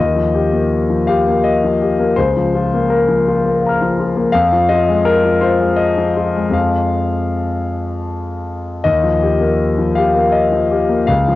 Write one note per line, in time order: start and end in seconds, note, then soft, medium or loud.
0.00 2.13 D#2 soft
0.00 1.08 D#5 medium
0.15 0.45 F3 soft
0.34 0.64 G4 soft
0.53 1.12 A#3 soft
0.90 1.19 F3 soft
1.07 1.37 G4 soft
1.07 1.44 F5 medium
1.27 1.85 A#3 soft
1.44 2.17 D#5 medium
1.64 1.92 F3 soft
1.82 2.10 G4 soft
2.00 2.18 A#3 soft
2.16 4.30 C#2 soft
2.16 2.89 C5 medium
2.36 2.65 F3 soft
2.55 2.83 F4 soft
2.74 3.30 A#3 soft
2.90 3.62 A#4 soft
3.08 3.37 F3 soft
3.28 3.56 F4 soft
3.45 4.02 A#3 soft
3.63 4.31 F5 soft
3.63 4.32 A#5 soft
3.69 4.34 F6 soft
3.82 4.10 F3 soft
4.00 4.28 F4 soft
4.16 4.34 A#3 soft
4.32 6.48 F2 soft
4.32 4.69 F5 medium
4.52 4.81 F3 soft
4.69 4.99 F4 soft
4.69 5.05 D#5 medium
4.88 5.46 G#3 soft
5.05 5.42 A#4 medium
5.24 5.53 F3 soft
5.41 5.72 F4 soft
5.41 5.79 C5 medium
5.60 6.20 G#3 soft
5.76 6.53 D#5 medium
5.97 6.28 F3 soft
6.17 6.47 F4 soft
6.36 6.51 G#3 soft
6.50 8.78 F2 soft
6.50 8.79 F3 soft
6.50 8.79 G#3 soft
6.50 8.80 F4 soft
6.50 8.46 F5 soft
8.84 11.05 D#2 soft
8.84 9.97 D#5 medium
9.03 9.34 F3 soft
9.22 9.52 G4 soft
9.40 10.00 A#3 soft
9.78 10.08 F3 soft
9.95 10.27 G4 soft
9.95 10.33 F5 medium
10.15 10.75 A#3 soft
10.32 11.08 D#5 medium
10.52 10.82 F3 soft
10.71 11.01 G4 soft
10.89 11.09 A#3 soft
11.07 11.35 C#2 soft
11.07 11.35 F5 medium
11.28 11.35 F3 soft